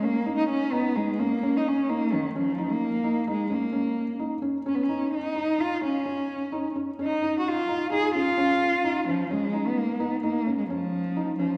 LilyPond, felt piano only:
\new Staff \with { instrumentName = "Felt piano" } { \time 5/4 \key des \mixolydian \tempo 4 = 129 des'8 ees'4 ees'8 ees'8 des'8 des'4 ees'8 des'8 | des'8 ees'4 ees'8 ees'8 des'8 des'4 ees'8 des'8 | des'8 ees'4 ees'8 ees'8 des'8 des'4 ees'8 des'8 | des'8 ees'4 ees'8 ees'8 des'8 des'4 ees'8 des'8 |
des'8 ees'4 ees'8 ees'8 des'8 des'4 ees'8 des'8 | }